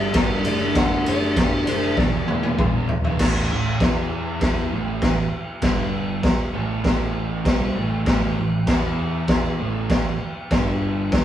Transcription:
Already playing: G1 G2 D3 G3
0.00 D5
0.13 G1 G2 D3 D5, kick, snare, ride
0.18 G3
0.29 G3
0.34 D3
0.44 F#1 D3 A3 D5, ride
0.49 D4
0.60 D4
0.65 A3
0.75 F#1 D3 A3 F#5, kick, snare, ride
0.80 D4
1.06 F#1 D3 A3 D5, ride
1.11 D4
1.36 F#1 D3 A3, kick, snare, ride
1.41 D4
1.52 D4
1.57 A3
1.67 F#1 D3 A3 C5, ride
1.72 D4
1.83 D4
1.87 A3
1.97 E1 E2 B2 D5, kick, snare
2.03 E3
2.13 E3
2.18 B2
2.27 E1 E2 B2, high tom
2.31 E3
2.43 high tom
2.57 E1 E2 B2, kick, mid tom
2.63 E3
2.73 E3
2.78 B2
2.89 muted distorted electric guitar stroke, floor tom
3.04 E3, floor tom
3.09 B2
3.19 A1 A2 E3 A3, kick, snare, crash
3.51 A1 A2 E3
3.80 E2 E3 B3 E4, kick, snare, crash
4.41 kick, snare, crash
4.72 A1 A2 E3 A3
5.02 A1 A2 E3, kick, snare, crash
5.62 G1 G2 D3 G3, kick, snare, crash
6.23 muted picked electric bass stroke, muted distorted electric guitar stroke, kick, snare, crash
6.54 A1 A2 E3 A3
6.84 kick, snare, crash
7.45 C2 C3 G3 C4, kick, snare, crash
7.76 A1 A2 E3 A3
8.06 A1 A2 E3 A3, kick, snare, crash
8.38 A1 A2 E3
8.67 E2 E3 B3 E4, kick, snare, crash
9.28 kick, snare, crash
9.60 A1 A2 E3 A3
9.90 A1 A2 E3, kick, snare, crash
10.51 G1 G2 D3 G3, kick, snare, crash
11.12 muted picked electric bass stroke, muted distorted electric guitar stroke, kick, snare, crash

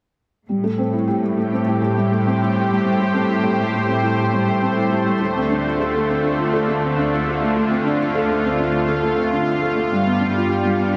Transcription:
0.49 A2 G3
0.64 A3
0.78 C4
0.93 E4
1.08 G4
1.12 G4
1.23 G3 A3
1.37 A3
1.52 C4
1.67 E4
1.82 G4
1.94 G3 C5
2.11 A3
2.26 C4
2.41 E4
2.56 G4
2.70 G3
2.84 G3
2.99 A3
3.14 C4
3.29 E4
3.43 G4
3.58 G3
3.73 A3
3.88 C4
4.03 E4
4.18 G4
4.32 G3
4.47 A3
4.62 C4
4.77 E4
4.91 G4
5.06 G3
5.20 D2 D3 A3
5.36 C4
5.50 D4
5.55 F4
5.65 F4
5.80 A4
5.94 A3
6.09 C4
6.24 D4
6.38 F4
6.53 A4
6.68 A3
6.83 C4
6.97 D4
7.12 F4
7.27 A4
7.42 A3
7.56 A3
7.70 C4
7.85 D4
8.00 F4
8.15 A4
8.29 A3
8.44 C4
8.59 D4
8.74 F4
8.88 A4
9.03 A3
9.18 C4
9.32 D4
9.47 F4
9.62 A4
9.76 A3
9.90 G2 G3
10.06 B3
10.20 D4
10.35 F4
10.49 G4
10.57 D4
10.64 G3
10.79 B3
10.94 D4

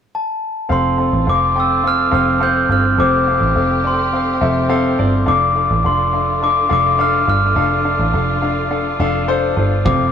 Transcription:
0.15 A5
0.69 F1 A3 C4 F4 A4 F5 C6
0.98 C4 A4 F5
1.13 A1
1.26 F1 C4 A4 F5 D6
1.55 C4 A4 G5
1.60 E6
1.83 C4 A4 F5
1.87 F6
2.11 F1 C4 A4 F5 F6
2.40 C4 A4 F5 G6
2.69 G1 C4 A4 F5 F6
2.98 F1 C4 G4 A4 C5 D6
3.27 C4 A4 F5
3.41 A1
3.55 F1 C4 A4 F5
3.84 C4 A4 D5 C6
4.13 C4 A4 F5
4.41 F1 C4 A4 E5
4.69 C4 A4 F5
4.99 G1 C4 A4 D5
5.26 F1 A3 D4 F4 A4 F5 D6
5.55 D4 A4 F5
5.71 A1
5.84 F1 D4 A4 F5 C6
6.13 D4 A4 F5
6.42 D4 A4 F5 D6
6.69 F1 D4 A4 F5 D6
6.99 D4 A4 F5 F6
7.27 G1 D4 A4 F5 F6
7.56 F1 D4 A4 F5
7.84 D4 A4 F5
7.99 A1
8.13 F1 D4 A4 F5
8.42 D4 A4 F5
8.70 D4 A4 F5
9.00 F1 D4 A4 F5
9.28 D4 A4 C5
9.56 G1 D4 A4 C5
9.85 F1 A3 C4 A4 F5 D6, kick

